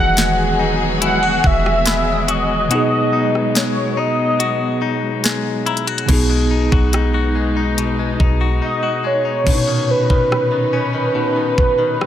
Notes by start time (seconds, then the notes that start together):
Already playing: E1 D#3 E3 F#3 G#3 B3 D#4 F#4 G#4 B4 D#5 F#5 G#5
0.17 G#3, snare, closed hi-hat
0.59 D#4
1.02 E4 F#5, closed hi-hat
1.23 F#4
1.44 E1 E5, kick
1.66 cross-stick
1.86 G#3 B5, snare, closed hi-hat
2.12 D#6
2.28 F#4 D#5, closed hi-hat
2.68 B2 G#3 B3 F#4, closed hi-hat
2.73 D#4 G#4
3.13 D#4
3.35 cross-stick
3.50 D#5
3.55 G#3 C#5, snare, closed hi-hat
3.97 D#4 D#5
4.40 F#4, closed hi-hat
4.82 D#4
5.24 G#3, snare, closed hi-hat
5.66 E4 A#5, closed hi-hat
5.77 closed hi-hat
5.87 F#4, closed hi-hat
5.98 closed hi-hat
6.06 B1 B2 G#3 B3 D#4, kick, closed hi-hat, crash
6.10 D#4 G#4
6.29 G#3
6.51 D#4
6.72 B1 F#4, kick
6.93 D#4, cross-stick, closed hi-hat
7.14 F#4
7.35 G#3
7.57 D#4
7.78 B2, closed hi-hat
7.99 G#3
8.20 B1 D#4, kick
8.41 F#4
8.62 D#4 D#5
8.83 F#4
9.04 G#3 C#5
9.25 D#4
9.44 A#2 B2 C#4 D#4 B4, kick, crash
9.48 D4 C#5
9.55 D#4
9.68 D#3
9.91 B4
10.10 D#3, kick
10.32 cross-stick
10.52 D#3
10.73 C#4 B4
10.94 D#3
11.15 B2
11.36 D#3
11.58 kick
11.79 D#3
12.01 cross-stick